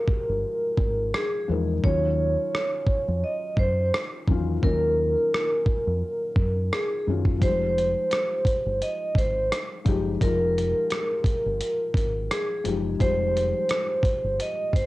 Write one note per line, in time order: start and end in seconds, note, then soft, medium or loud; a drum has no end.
0.00 1.48 F3 medium
0.00 1.49 G#3 medium
0.00 1.50 D#4 medium
0.00 1.85 F4 medium
0.00 1.85 F#4 medium
0.00 1.85 G4 medium
0.00 1.10 A#4 loud
0.08 kick loud
0.29 0.43 G1 medium
0.78 1.11 G#1 medium
0.78 kick medium
1.14 1.46 G#4 medium
1.14 cross-stick medium
1.48 1.82 E2 medium
1.48 1.73 F3 medium
1.48 1.73 G#3 medium
1.48 1.74 D#4 medium
1.48 1.74 A#4 medium
1.84 2.35 D#2 loud
1.84 2.76 D#3 medium
1.84 2.76 F#3 medium
1.84 2.77 C#4 medium
1.84 2.78 F4 medium
1.84 3.19 C#5 medium
1.84 kick loud
2.55 cross-stick loud
2.87 kick loud
3.08 3.22 F2 medium
3.24 3.55 D#5 medium
3.57 3.90 F#2 medium
3.57 3.90 C5 medium
3.57 kick medium
3.94 cross-stick loud
4.27 4.61 E2 medium
4.27 4.52 D#3 medium
4.27 4.52 F#3 medium
4.27 4.53 C#4 medium
4.27 4.54 F4 medium
4.27 kick loud
4.62 5.14 D#2 loud
4.62 5.54 D#3 medium
4.62 5.55 F#3 medium
4.62 5.55 C#4 medium
4.62 5.56 F4 medium
4.62 6.72 A#4 loud
4.62 kick loud
5.34 cross-stick loud
5.66 kick loud
5.87 6.01 F2 medium
6.36 6.70 F#2 medium
6.36 kick medium
6.73 7.04 G#4 medium
6.73 cross-stick loud
7.07 7.40 F#2 medium
7.07 7.31 D#3 medium
7.07 7.31 F#3 medium
7.07 7.32 C#4 medium
7.07 7.33 F4 medium
7.25 kick medium
7.40 7.93 F1 loud
7.40 8.33 F3 medium
7.40 7.49 G3 soft
7.40 8.34 D#4 medium
7.40 8.35 G4 medium
7.40 8.78 C5 medium
7.40 kick loud
7.40 closed hi-hat medium
7.47 8.37 G#3 medium
7.78 closed hi-hat medium
8.11 cross-stick loud
8.11 closed hi-hat medium
8.45 kick loud
8.45 closed hi-hat medium
8.66 8.80 G1 medium
8.82 9.13 D#5 medium
8.82 closed hi-hat medium
9.15 9.49 G#1 medium
9.15 9.48 C5 medium
9.15 kick medium
9.15 closed hi-hat medium
9.52 cross-stick medium
9.52 closed hi-hat medium
9.85 10.19 F#1 medium
9.85 10.10 F3 medium
9.85 10.10 G#3 medium
9.85 10.11 D#4 medium
9.85 10.11 G4 medium
9.85 kick medium
9.85 closed hi-hat medium
10.20 10.72 F1 loud
10.20 11.13 F3 medium
10.20 11.13 G#3 medium
10.20 11.14 D#4 medium
10.20 11.14 F4 medium
10.20 12.26 A#4 medium
10.20 kick loud
10.20 closed hi-hat medium
10.58 closed hi-hat medium
10.90 cross-stick loud
10.90 closed hi-hat medium
11.24 kick loud
11.24 closed hi-hat medium
11.46 11.60 G1 medium
11.61 closed hi-hat medium
11.94 12.28 G#1 medium
11.94 kick medium
11.94 closed hi-hat medium
12.31 12.62 G#4 medium
12.31 cross-stick loud
12.31 closed hi-hat medium
12.64 12.98 F#1 medium
12.64 12.89 F3 medium
12.64 12.89 G#3 medium
12.64 12.90 D#4 medium
12.64 12.90 G4 medium
12.64 closed hi-hat medium
12.99 13.52 F1 loud
12.99 13.92 F3 medium
12.99 13.07 G3 soft
12.99 13.93 D#4 medium
12.99 13.93 G4 medium
12.99 14.36 C5 medium
12.99 kick loud
12.99 closed hi-hat medium
13.07 13.95 G#3 medium
13.37 closed hi-hat medium
13.69 cross-stick loud
13.69 closed hi-hat medium
14.03 kick loud
14.03 closed hi-hat medium
14.24 14.38 G1 medium
14.40 14.72 D#5 medium
14.40 closed hi-hat medium
14.73 14.86 G#1 medium
14.73 14.86 C5 medium
14.73 kick medium
14.73 closed hi-hat medium